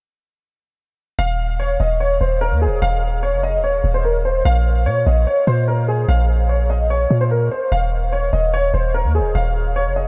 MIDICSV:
0, 0, Header, 1, 3, 480
1, 0, Start_track
1, 0, Tempo, 408163
1, 1396, Time_signature, 4, 2, 24, 8
1, 11852, End_track
2, 0, Start_track
2, 0, Title_t, "Grand piano"
2, 0, Program_c, 0, 0
2, 1395, Note_on_c, 0, 77, 103
2, 1847, Note_off_c, 0, 77, 0
2, 1876, Note_on_c, 0, 73, 87
2, 2058, Note_off_c, 0, 73, 0
2, 2116, Note_on_c, 0, 75, 76
2, 2298, Note_off_c, 0, 75, 0
2, 2356, Note_on_c, 0, 73, 83
2, 2538, Note_off_c, 0, 73, 0
2, 2595, Note_on_c, 0, 72, 76
2, 2777, Note_off_c, 0, 72, 0
2, 2836, Note_on_c, 0, 70, 91
2, 3018, Note_off_c, 0, 70, 0
2, 3076, Note_on_c, 0, 68, 77
2, 3258, Note_off_c, 0, 68, 0
2, 3317, Note_on_c, 0, 77, 94
2, 3768, Note_off_c, 0, 77, 0
2, 3796, Note_on_c, 0, 73, 83
2, 3978, Note_off_c, 0, 73, 0
2, 4037, Note_on_c, 0, 75, 82
2, 4218, Note_off_c, 0, 75, 0
2, 4276, Note_on_c, 0, 73, 81
2, 4615, Note_off_c, 0, 73, 0
2, 4636, Note_on_c, 0, 72, 76
2, 4727, Note_off_c, 0, 72, 0
2, 4757, Note_on_c, 0, 70, 68
2, 4938, Note_off_c, 0, 70, 0
2, 4998, Note_on_c, 0, 72, 77
2, 5179, Note_off_c, 0, 72, 0
2, 5238, Note_on_c, 0, 77, 97
2, 5688, Note_off_c, 0, 77, 0
2, 5717, Note_on_c, 0, 73, 88
2, 5898, Note_off_c, 0, 73, 0
2, 5957, Note_on_c, 0, 75, 71
2, 6138, Note_off_c, 0, 75, 0
2, 6197, Note_on_c, 0, 73, 79
2, 6378, Note_off_c, 0, 73, 0
2, 6436, Note_on_c, 0, 72, 82
2, 6618, Note_off_c, 0, 72, 0
2, 6678, Note_on_c, 0, 70, 80
2, 6859, Note_off_c, 0, 70, 0
2, 6917, Note_on_c, 0, 68, 78
2, 7098, Note_off_c, 0, 68, 0
2, 7157, Note_on_c, 0, 77, 87
2, 7608, Note_off_c, 0, 77, 0
2, 7634, Note_on_c, 0, 73, 76
2, 7816, Note_off_c, 0, 73, 0
2, 7876, Note_on_c, 0, 75, 74
2, 8058, Note_off_c, 0, 75, 0
2, 8117, Note_on_c, 0, 73, 80
2, 8455, Note_off_c, 0, 73, 0
2, 8476, Note_on_c, 0, 72, 84
2, 8567, Note_off_c, 0, 72, 0
2, 8598, Note_on_c, 0, 70, 73
2, 8779, Note_off_c, 0, 70, 0
2, 8836, Note_on_c, 0, 72, 74
2, 9018, Note_off_c, 0, 72, 0
2, 9077, Note_on_c, 0, 77, 97
2, 9528, Note_off_c, 0, 77, 0
2, 9555, Note_on_c, 0, 73, 82
2, 9737, Note_off_c, 0, 73, 0
2, 9795, Note_on_c, 0, 75, 79
2, 9977, Note_off_c, 0, 75, 0
2, 10038, Note_on_c, 0, 73, 91
2, 10219, Note_off_c, 0, 73, 0
2, 10276, Note_on_c, 0, 72, 81
2, 10458, Note_off_c, 0, 72, 0
2, 10518, Note_on_c, 0, 70, 81
2, 10699, Note_off_c, 0, 70, 0
2, 10757, Note_on_c, 0, 68, 76
2, 10938, Note_off_c, 0, 68, 0
2, 10996, Note_on_c, 0, 77, 87
2, 11447, Note_off_c, 0, 77, 0
2, 11477, Note_on_c, 0, 73, 88
2, 11658, Note_off_c, 0, 73, 0
2, 11715, Note_on_c, 0, 75, 73
2, 11852, Note_off_c, 0, 75, 0
2, 11852, End_track
3, 0, Start_track
3, 0, Title_t, "808-style bass"
3, 0, Program_c, 1, 38
3, 1396, Note_on_c, 1, 27, 108
3, 2087, Note_off_c, 1, 27, 0
3, 2116, Note_on_c, 1, 27, 106
3, 2577, Note_off_c, 1, 27, 0
3, 2596, Note_on_c, 1, 27, 106
3, 2956, Note_on_c, 1, 39, 102
3, 2974, Note_off_c, 1, 27, 0
3, 3136, Note_on_c, 1, 27, 102
3, 3154, Note_off_c, 1, 39, 0
3, 3307, Note_off_c, 1, 27, 0
3, 3316, Note_on_c, 1, 27, 103
3, 3915, Note_on_c, 1, 29, 98
3, 3933, Note_off_c, 1, 27, 0
3, 4216, Note_on_c, 1, 27, 95
3, 4233, Note_off_c, 1, 29, 0
3, 4501, Note_off_c, 1, 27, 0
3, 4516, Note_on_c, 1, 27, 108
3, 5207, Note_off_c, 1, 27, 0
3, 5236, Note_on_c, 1, 34, 106
3, 5716, Note_on_c, 1, 46, 96
3, 5734, Note_off_c, 1, 34, 0
3, 5944, Note_off_c, 1, 46, 0
3, 5956, Note_on_c, 1, 34, 105
3, 6186, Note_off_c, 1, 34, 0
3, 6436, Note_on_c, 1, 46, 105
3, 7127, Note_off_c, 1, 46, 0
3, 7155, Note_on_c, 1, 34, 110
3, 8309, Note_off_c, 1, 34, 0
3, 8356, Note_on_c, 1, 46, 109
3, 8817, Note_off_c, 1, 46, 0
3, 9076, Note_on_c, 1, 27, 111
3, 9767, Note_off_c, 1, 27, 0
3, 9796, Note_on_c, 1, 27, 104
3, 10257, Note_off_c, 1, 27, 0
3, 10276, Note_on_c, 1, 27, 109
3, 10636, Note_on_c, 1, 39, 105
3, 10653, Note_off_c, 1, 27, 0
3, 10815, Note_on_c, 1, 27, 99
3, 10833, Note_off_c, 1, 39, 0
3, 10987, Note_off_c, 1, 27, 0
3, 10995, Note_on_c, 1, 27, 111
3, 11595, Note_on_c, 1, 29, 98
3, 11613, Note_off_c, 1, 27, 0
3, 11852, Note_off_c, 1, 29, 0
3, 11852, End_track
0, 0, End_of_file